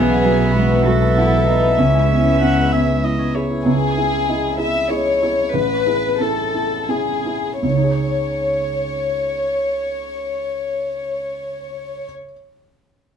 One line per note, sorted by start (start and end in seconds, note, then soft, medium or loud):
0.00 1.74 B1 medium
0.00 1.80 B1 medium
0.00 1.78 E3 medium
0.00 1.80 A3 medium
0.00 0.85 B3 medium
0.00 1.77 B3 medium
0.00 0.54 G#4 medium
0.00 0.39 B4 medium
0.00 3.66 B4 medium
0.00 2.31 E5 medium
0.11 1.16 F#5 soft
0.24 0.72 F#3 soft
0.41 0.85 B4 medium
0.54 0.85 G#3 soft
0.54 0.84 F#4 soft
0.70 1.00 A5 soft
0.84 1.34 F#3 soft
0.84 1.20 F#4 medium
0.84 1.78 A4 medium
0.84 1.31 B4 medium
1.01 1.46 A5 soft
1.16 1.65 E4 soft
1.16 1.46 E4 medium
1.16 1.81 F#5 soft
1.32 2.55 B4 medium
1.47 1.80 D#4 medium
1.47 1.78 A4 soft
1.47 1.81 A5 soft
1.62 5.52 E5 soft
1.78 3.62 C#2 soft
1.78 3.67 C#2 soft
1.78 3.67 G#3 medium
1.78 2.24 C#4 medium
1.78 3.04 C#4 medium
1.78 3.63 E4 soft
1.78 3.35 E5 medium
1.93 5.83 G#5 soft
2.11 2.61 B3 soft
2.25 2.71 C#4 soft
2.41 2.73 C#4 soft
2.41 3.49 E4 soft
2.41 2.73 F#5 soft
2.56 2.86 B4 soft
2.72 3.23 B3 soft
2.72 3.17 C#4 soft
2.72 3.05 E5 soft
2.87 3.34 B4 soft
3.04 3.54 E4 soft
3.04 3.36 D#5 soft
3.18 7.08 C#4 soft
3.35 3.66 G#4 soft
3.35 3.68 B4 soft
3.35 3.66 C#5 soft
3.50 7.40 E4 soft
3.65 3.96 C#2 soft
3.65 4.55 G#4 medium
3.97 4.25 E4 soft
3.97 4.25 G#4 soft
4.28 4.57 E4 soft
4.28 4.57 G#4 soft
4.28 4.56 D#5 soft
4.58 4.87 E4 soft
4.58 4.87 G#4 soft
4.58 4.91 E5 medium
4.90 5.19 E4 soft
4.90 5.19 G#4 soft
4.90 5.54 C#5 medium
4.90 5.19 D#5 soft
5.22 5.51 E4 soft
5.22 5.51 G#4 soft
5.53 5.85 A1 soft
5.53 6.19 B4 medium
5.86 6.16 E4 soft
5.86 6.16 G#4 soft
6.19 6.51 C#4 soft
6.19 6.51 E4 soft
6.19 6.89 A4 medium
6.19 6.51 A4 soft
6.54 6.86 E4 soft
6.54 6.86 A4 soft
6.88 7.22 C#4 soft
6.88 7.22 E4 soft
6.88 7.62 G#4 soft
6.88 7.22 G#4 soft
7.25 7.59 E4 soft
7.25 7.60 G#4 soft
7.61 12.11 C#2 soft
7.61 12.10 C#5 soft
7.69 12.17 C#3 soft
7.76 12.25 D#4 soft
7.83 12.31 G#4 soft